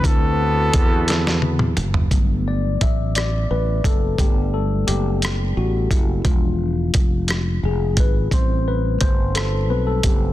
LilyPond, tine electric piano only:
<<
  \new Staff \with { instrumentName = "Tine electric piano" } { \time 6/8 \key g \major \tempo 4. = 58 <d c' e' fis' b'>2. | r8 d''8 e''8 d''8 b'8 a'8 | g'8 a'8 g'4 fis'8 e'8 | f'8 r4. gis'8 b'8 |
c''8 b'8 c''8 a'8 b'16 a'16 g'8 | }
  \new Staff \with { instrumentName = "Tine electric piano" } { \time 6/8 \key g \major r2. | <fis a b>4. r4. | <g a b>2. | <f gis d'>8 r2 r8 |
<g a c'>2 <g b c'>8 r8 | }
>>